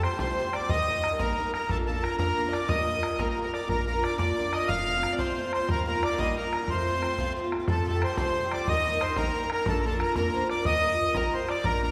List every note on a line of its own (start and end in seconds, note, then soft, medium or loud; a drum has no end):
0.00 0.13 F3 soft
0.00 0.12 G3 medium
0.00 0.11 A3 soft
0.00 0.18 C5 medium
0.00 0.19 C5 medium
0.00 bodhran medium
0.11 0.19 F3 soft
0.11 0.19 G3 soft
0.11 0.19 A3 soft
0.11 0.19 G4 medium
0.19 0.34 C2 medium
0.19 0.38 F2 medium
0.19 0.38 C3 medium
0.19 0.36 F3 medium
0.19 0.37 G3 medium
0.19 0.38 A3 medium
0.19 0.38 G4 medium
0.19 0.55 C5 medium
0.19 0.52 C5 medium
0.19 bodhran medium
0.37 0.46 F3 medium
0.37 0.46 G3 medium
0.37 0.45 A3 medium
0.37 0.44 G4 medium
0.45 0.63 F3 soft
0.45 0.62 G3 soft
0.45 0.61 A3 soft
0.45 0.60 G4 medium
0.53 0.70 D5 medium
0.53 0.71 D5 medium
0.53 bodhran medium
0.61 0.69 F3 soft
0.61 0.69 G3 soft
0.61 0.70 A3 medium
0.61 0.69 G4 medium
0.69 1.08 D#2 medium
0.69 0.87 D#3 medium
0.69 0.87 G3 medium
0.69 0.86 A#3 medium
0.69 0.88 D#4 medium
0.69 0.88 A#4 medium
0.69 1.21 D#5 loud
0.69 1.21 D#5 medium
0.69 bodhran medium
0.88 0.96 G3 medium
0.88 0.96 A#3 medium
0.88 0.96 D#4 medium
0.88 0.95 A#4 medium
0.96 1.13 G3 soft
0.96 1.12 D#4 medium
0.96 1.10 A#4 medium
1.04 bodhran medium
1.12 1.19 G3 soft
1.12 1.20 D#4 soft
1.12 1.20 A#4 medium
1.19 1.33 A#1 medium
1.19 1.38 D#3 medium
1.19 1.37 G3 medium
1.19 1.37 A#3 medium
1.19 1.38 D#4 medium
1.19 1.53 A#4 medium
1.19 1.51 A#4 medium
1.19 1.39 A#4 medium
1.19 bodhran medium
1.38 1.46 G3 medium
1.38 1.46 A#3 medium
1.38 1.46 D#4 medium
1.38 1.45 A#4 medium
1.46 1.63 G3 soft
1.46 1.62 D#4 soft
1.46 1.60 A#4 medium
1.53 1.70 A#4 medium
1.53 bodhran medium
1.62 1.69 G3 soft
1.62 1.70 D#4 medium
1.62 1.70 A#4 medium
1.68 2.07 A#1 medium
1.68 1.86 A#3 medium
1.68 1.87 D4 medium
1.68 1.88 F4 medium
1.68 1.87 A4 medium
1.68 1.78 A4 medium
1.68 1.88 A#4 medium
1.68 bodhran medium
1.87 1.95 A#3 medium
1.87 1.96 D4 medium
1.87 1.96 F4 medium
1.87 2.04 A4 medium
1.87 1.94 A#4 medium
1.95 2.12 D4 soft
1.95 2.11 F4 medium
1.95 2.10 A#4 medium
2.02 2.16 A#4 loud
2.02 2.18 A#4 medium
2.02 bodhran medium
2.11 2.18 D4 medium
2.11 2.19 F4 medium
2.11 2.19 A#4 medium
2.18 2.33 F2 medium
2.18 2.36 A#3 medium
2.18 2.36 D4 medium
2.18 2.37 F4 medium
2.18 2.54 A#4 loud
2.18 2.50 A#4 medium
2.18 2.38 A#4 medium
2.18 bodhran medium
2.37 2.45 A#3 medium
2.37 2.46 D4 medium
2.37 2.45 F4 medium
2.37 2.43 A#4 medium
2.44 2.61 D4 soft
2.44 2.60 F4 soft
2.44 2.59 A#4 medium
2.44 2.55 D#5 medium
2.52 2.69 D5 medium
2.52 2.67 D5 medium
2.52 bodhran medium
2.60 2.68 D4 soft
2.60 2.68 F4 medium
2.60 2.68 A#4 medium
2.67 3.07 D#2 medium
2.67 2.87 D#3 medium
2.67 2.85 G3 medium
2.67 2.84 A#3 medium
2.67 2.86 F4 medium
2.67 2.87 A#4 medium
2.67 3.21 D#5 medium
2.67 3.20 D#5 loud
2.67 bodhran medium
2.86 2.95 G3 medium
2.86 2.95 A#3 medium
2.86 2.94 F4 medium
2.86 2.93 A#4 medium
2.94 3.11 G3 soft
2.94 3.10 F4 medium
2.94 3.09 A#4 medium
3.03 bodhran medium
3.10 3.18 G3 soft
3.10 3.18 F4 soft
3.10 3.19 A#4 soft
3.18 3.32 A#1 medium
3.18 3.37 D#3 medium
3.18 3.36 G3 medium
3.18 3.35 A#3 medium
3.18 3.37 F4 medium
3.18 3.28 A#4 medium
3.18 3.31 A#4 medium
3.18 3.38 A#4 medium
3.18 bodhran medium
3.29 3.40 A#4 medium
3.37 3.45 G3 medium
3.37 3.45 A#3 medium
3.37 3.44 F4 medium
3.37 3.43 A#4 medium
3.41 3.52 A#4 medium
3.41 3.67 A#4 medium
3.41 3.58 A#4 soft
3.46 3.61 G3 soft
3.46 3.60 F4 soft
3.54 3.68 D5 medium
3.54 bodhran soft
3.60 3.68 G3 soft
3.60 3.68 F4 soft
3.60 3.68 A#4 soft
3.68 4.07 A#1 medium
3.68 3.85 A#3 medium
3.68 3.86 D4 medium
3.68 3.87 F4 medium
3.68 3.85 A#4 medium
3.68 3.87 A#4 medium
3.68 bodhran medium
3.86 3.95 A#3 medium
3.86 3.95 D4 medium
3.86 3.94 F4 medium
3.86 4.03 A#4 medium
3.86 4.05 A#4 medium
3.86 3.93 A#4 medium
3.94 4.12 D4 soft
3.94 4.10 F4 medium
3.94 4.09 A#4 medium
4.03 4.19 D5 medium
4.03 4.17 D5 loud
4.03 bodhran medium
4.10 4.17 D4 soft
4.10 4.18 F4 soft
4.10 4.18 A#4 soft
4.18 4.33 F2 medium
4.18 4.35 A#3 medium
4.18 4.37 D4 medium
4.18 4.37 F4 medium
4.18 4.38 A#4 medium
4.18 4.54 D5 medium
4.18 4.55 D5 medium
4.18 bodhran medium
4.36 4.45 A#3 medium
4.36 4.45 D4 medium
4.36 4.45 F4 medium
4.36 4.43 A#4 medium
4.45 4.61 D4 soft
4.45 4.61 F4 soft
4.45 4.59 A#4 soft
4.53 4.69 D#5 loud
4.53 4.69 D#5 medium
4.53 bodhran medium
4.60 4.68 D4 soft
4.60 4.69 F4 medium
4.60 4.69 A#4 medium
4.68 5.07 F1 medium
4.68 4.85 F3 medium
4.68 4.88 A3 medium
4.68 4.87 C4 medium
4.68 4.88 F4 medium
4.68 5.14 F5 medium
4.68 5.15 F5 loud
4.68 bodhran medium
4.86 4.95 F3 medium
4.86 4.95 A3 medium
4.86 4.95 C4 medium
4.86 4.93 F4 medium
4.94 5.11 A3 medium
4.94 5.12 C4 soft
4.94 5.09 F4 medium
5.03 bodhran medium
5.10 5.18 A3 soft
5.10 5.18 C4 soft
5.10 5.19 F4 medium
5.10 5.22 D5 medium
5.18 5.33 C2 medium
5.18 5.35 F3 medium
5.18 5.37 A3 medium
5.18 5.36 C4 medium
5.18 5.38 F4 medium
5.18 5.52 C5 medium
5.18 bodhran medium
5.36 5.45 F3 medium
5.36 5.44 A3 medium
5.36 5.45 C4 medium
5.36 5.43 F4 medium
5.44 5.60 A3 soft
5.44 5.61 C4 soft
5.44 5.59 F4 soft
5.52 5.67 C5 medium
5.52 5.70 C5 loud
5.52 bodhran medium
5.60 5.69 A3 soft
5.60 5.69 C4 soft
5.60 5.68 F4 medium
5.68 6.07 D#2 loud
5.68 5.87 D#3 medium
5.68 5.85 G3 medium
5.68 5.86 A#3 medium
5.68 5.87 D#4 medium
5.68 5.87 F4 medium
5.68 5.86 A#4 medium
5.68 5.86 A#4 loud
5.68 bodhran medium
5.86 5.94 G3 medium
5.86 5.95 A#3 medium
5.86 5.94 D#4 medium
5.86 5.93 F4 medium
5.86 6.05 A#4 medium
5.86 6.04 A#4 medium
5.94 6.12 A#3 medium
5.94 6.11 D#4 medium
5.94 6.09 F4 medium
6.03 6.21 D5 medium
6.03 6.18 D5 loud
6.03 bodhran medium
6.10 6.18 A#3 soft
6.10 6.18 D#4 soft
6.10 6.18 F4 medium
6.18 6.33 A#1 medium
6.18 6.36 D#3 medium
6.18 6.35 G3 medium
6.18 6.36 A#3 loud
6.18 6.37 D#4 medium
6.18 6.37 F4 medium
6.18 6.36 D#5 loud
6.18 6.36 D#5 medium
6.18 bodhran medium
6.36 6.44 G3 soft
6.36 6.45 A#3 medium
6.36 6.45 D#4 medium
6.36 6.43 F4 medium
6.36 6.70 A#4 medium
6.45 6.62 A#3 soft
6.45 6.61 D#4 soft
6.45 6.60 F4 soft
6.53 bodhran medium
6.61 6.69 A#3 soft
6.61 6.69 D#4 medium
6.61 6.69 F4 medium
6.68 7.06 F2 medium
6.68 6.86 F3 medium
6.68 6.87 A3 medium
6.68 6.87 C4 medium
6.68 6.88 F4 medium
6.68 7.36 C5 medium
6.68 7.33 C5 loud
6.68 bodhran medium
6.87 6.95 F3 medium
6.87 6.95 A3 medium
6.87 6.95 C4 medium
6.87 6.94 F4 medium
6.95 7.10 A3 medium
6.95 7.12 C4 medium
6.95 7.09 F4 medium
7.02 bodhran soft
7.10 7.18 A3 medium
7.10 7.18 C4 soft
7.10 7.18 F4 medium
7.18 7.32 C2 medium
7.18 7.35 F3 medium
7.18 7.37 A3 loud
7.18 7.36 C4 medium
7.18 7.37 F4 loud
7.18 bodhran medium
7.36 7.44 F3 medium
7.36 7.45 A3 medium
7.36 7.45 C4 medium
7.36 7.43 F4 medium
7.44 7.60 A3 soft
7.44 7.61 C4 soft
7.44 7.59 F4 medium
7.52 bodhran medium
7.60 7.69 A3 medium
7.60 7.69 C4 soft
7.60 7.68 F4 medium
7.68 7.86 F2 medium
7.68 8.06 F2 medium
7.68 7.86 C3 medium
7.68 7.85 F3 medium
7.68 7.86 G3 medium
7.68 7.87 A3 medium
7.68 7.87 G4 medium
7.68 7.85 A4 medium
7.68 7.86 A4 medium
7.68 bodhran loud
7.86 7.94 F3 medium
7.86 7.94 G3 medium
7.86 7.94 A3 medium
7.86 7.93 G4 medium
7.86 8.04 A4 medium
7.86 8.03 A4 medium
7.94 8.11 F3 soft
7.94 8.11 G3 medium
7.94 8.10 A3 medium
7.94 8.09 G4 medium
8.02 8.18 C5 medium
8.02 8.17 C5 medium
8.02 bodhran medium
8.10 8.17 F3 soft
8.10 8.17 G3 soft
8.10 8.17 A3 soft
8.10 8.18 G4 medium
8.17 8.31 C2 medium
8.17 8.36 F2 medium
8.17 8.36 C3 medium
8.17 8.34 F3 medium
8.17 8.35 G3 medium
8.17 8.36 A3 medium
8.17 8.37 G4 medium
8.17 8.53 C5 loud
8.17 8.64 C5 medium
8.17 bodhran medium
8.35 8.44 F3 medium
8.35 8.44 G3 medium
8.35 8.44 A3 medium
8.35 8.42 G4 medium
8.44 8.60 F3 soft
8.44 8.59 G3 soft
8.44 8.59 A3 medium
8.44 8.57 G4 medium
8.52 8.68 D5 medium
8.52 bodhran medium
8.58 8.68 F3 soft
8.58 8.68 G3 soft
8.58 8.68 A3 soft
8.58 8.67 G4 medium
8.68 9.05 D#2 loud
8.68 8.86 D#3 medium
8.68 8.85 G3 medium
8.68 8.84 A#3 medium
8.68 8.85 D#4 medium
8.68 8.87 A#4 medium
8.68 9.03 D#5 loud
8.68 9.03 D#5 medium
8.68 bodhran medium
8.85 8.94 G3 medium
8.85 8.93 A#3 medium
8.85 8.93 D#4 medium
8.85 8.92 A#4 medium
8.93 9.10 G3 soft
8.93 9.09 D#4 medium
8.93 9.07 A#4 medium
9.01 9.18 C5 loud
9.01 9.16 C5 medium
9.01 bodhran medium
9.09 9.17 G3 soft
9.09 9.17 D#4 medium
9.09 9.17 A#4 medium
9.16 9.31 A#1 medium
9.16 9.35 D#3 medium
9.16 9.35 G3 medium
9.16 9.34 A#3 medium
9.16 9.36 D#4 medium
9.16 9.48 A#4 medium
9.16 9.51 A#4 loud
9.16 9.36 A#4 medium
9.16 bodhran medium
9.35 9.43 G3 medium
9.35 9.43 A#3 medium
9.35 9.44 D#4 medium
9.35 9.42 A#4 medium
9.43 9.60 G3 soft
9.43 9.60 D#4 soft
9.43 9.58 A#4 medium
9.50 9.68 A#4 medium
9.50 bodhran medium
9.59 9.68 G3 soft
9.59 9.68 D#4 soft
9.59 9.67 A#4 medium
9.66 10.04 A#1 medium
9.66 9.84 A#3 medium
9.66 9.85 D4 medium
9.66 9.85 F4 medium
9.66 9.84 A4 medium
9.66 9.81 A4 loud
9.66 9.86 A#4 medium
9.66 bodhran loud
9.81 9.99 A4 medium
9.81 9.85 A#4 medium
9.85 9.93 A#3 medium
9.85 9.93 D4 medium
9.85 9.93 F4 medium
9.85 10.02 A4 medium
9.85 9.91 A#4 medium
9.92 10.10 D4 medium
9.92 10.09 F4 medium
9.92 10.07 A#4 medium
10.00 10.15 A#4 medium
10.00 10.15 A#4 loud
10.00 bodhran medium
10.08 10.16 D4 soft
10.08 10.16 F4 medium
10.08 10.16 A#4 medium
10.16 10.30 F2 medium
10.16 10.33 A#3 medium
10.16 10.34 D4 medium
10.16 10.35 F4 medium
10.16 10.33 A#4 medium
10.16 10.48 A#4 medium
10.16 10.35 A#4 loud
10.16 bodhran medium
10.34 10.42 A#3 medium
10.34 10.43 D4 medium
10.34 10.43 F4 medium
10.34 10.41 A#4 medium
10.34 10.52 C5 medium
10.42 10.59 D4 soft
10.42 10.59 F4 medium
10.42 10.57 A#4 soft
10.50 10.68 D5 medium
10.50 10.65 D5 loud
10.50 bodhran soft
10.58 10.66 D4 soft
10.58 10.66 F4 medium
10.58 10.66 A#4 medium
10.65 11.03 D#2 medium
10.65 10.84 D#3 medium
10.65 10.84 G3 medium
10.65 10.83 A#3 medium
10.65 10.84 F4 medium
10.65 10.85 A#4 medium
10.65 11.17 D#5 loud
10.65 11.18 D#5 loud
10.65 bodhran medium
10.84 10.92 G3 medium
10.84 10.92 A#3 medium
10.84 10.91 F4 medium
10.84 10.90 A#4 medium
10.91 11.08 G3 soft
10.91 11.07 F4 medium
10.91 11.05 A#4 medium
11.07 11.14 G3 medium
11.07 11.15 F4 medium
11.07 11.15 A#4 medium
11.14 11.29 A#1 medium
11.14 11.33 D#3 medium
11.14 11.32 G3 medium
11.14 11.31 A#3 medium
11.14 11.32 F4 medium
11.14 11.34 A#4 loud
11.14 11.33 A#4 medium
11.14 11.36 A#4 medium
11.14 bodhran medium
11.32 11.41 G3 medium
11.32 11.41 A#3 medium
11.32 11.40 F4 medium
11.32 11.39 A#4 medium
11.32 11.50 C5 medium
11.32 11.51 C5 medium
11.40 11.58 G3 soft
11.40 11.57 F4 medium
11.40 11.55 A#4 medium
11.49 11.67 D5 medium
11.49 11.66 D5 medium
11.49 bodhran medium
11.56 11.64 G3 soft
11.56 11.64 F4 soft
11.56 11.65 A#4 medium
11.64 11.91 A#1 medium
11.64 11.80 A#3 medium
11.64 11.81 D4 medium
11.64 11.82 F4 medium
11.64 11.82 A#4 loud
11.64 11.82 A#4 medium
11.64 11.83 A#4 medium
11.64 bodhran medium
11.81 11.90 A#3 medium
11.81 11.91 D4 medium
11.81 11.90 F4 medium
11.81 11.91 A#4 medium
11.81 11.91 A#4 loud
11.81 11.89 A#4 medium